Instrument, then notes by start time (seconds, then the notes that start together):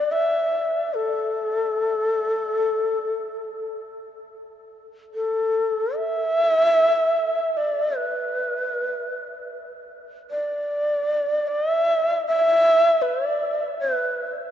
shakuhachi
Already playing: D5
0.11 E5
0.94 A4
5.14 A4
5.96 E5
7.57 D5
7.97 B4
10.31 D5
11.47 D5
11.70 E5
12.27 E5
13.02 B4
13.27 D5
13.80 B4